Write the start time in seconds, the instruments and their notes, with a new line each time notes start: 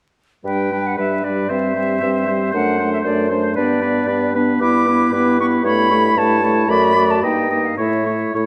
0.44 bassoon G2, french horn G3, clarinet D4, oboe B4, flute G5
0.72 french horn G3, clarinet D4, oboe B4
0.87 flute F#5
0.97 bassoon G2, french horn G3, clarinet D4, oboe B4, flute E5
1.24 french horn G3, clarinet D4, oboe B4, flute D5
1.48 bassoon G2, french horn G3, clarinet C4, oboe C5, flute E5
1.74 french horn G3, clarinet C4, oboe C5
2.01 bassoon G2, french horn G3, clarinet C4, oboe C5
2.27 french horn G3, clarinet C4, oboe C5
2.52 bassoon F#2, french horn A3, clarinet D4, oboe C5, flute F#5
2.79 french horn A3, clarinet D4, oboe C5
2.93 flute E5
3.04 bassoon F#2, french horn A3, clarinet D4, oboe C5, flute D5
3.30 french horn A3, clarinet D4, oboe C5, flute C5
3.55 bassoon G2, french horn B3, clarinet D4, oboe B4, flute D5
3.81 french horn B3, clarinet D4, oboe B4
4.07 bassoon G2, french horn B3, clarinet D4, oboe B4
4.35 french horn B3, clarinet D4, oboe B4
4.60 bassoon G2, french horn B3, clarinet E4, oboe B4, flute D6
4.87 french horn B3, clarinet E4, oboe B4
5.12 bassoon G2, french horn B3, clarinet E4, oboe B4
5.40 french horn B3, clarinet E4, oboe B4, flute C#6
5.63 bassoon G2, french horn A3, clarinet E4, oboe C#5, flute B5
5.91 french horn A3, clarinet E4, oboe C#5
6.16 bassoon G2, french horn A3, clarinet E4, oboe C#5, flute A5
6.42 french horn A3, clarinet E4, oboe C#5
6.68 bassoon F#2, french horn A3, clarinet F#4, oboe D5, flute B5
6.96 french horn A3, clarinet F#4, oboe D5
7.10 flute A5
7.22 bassoon G2, french horn A#3, clarinet D#4, oboe D#5, flute G5
7.50 french horn A#3, clarinet D#4, oboe D#5
7.66 flute F5
7.77 bassoon A2, french horn A3, clarinet E4, oboe C#5, flute E5
8.05 french horn A3, clarinet E4, oboe C#5
8.34 bassoon A2, french horn A3, clarinet E4, oboe C#5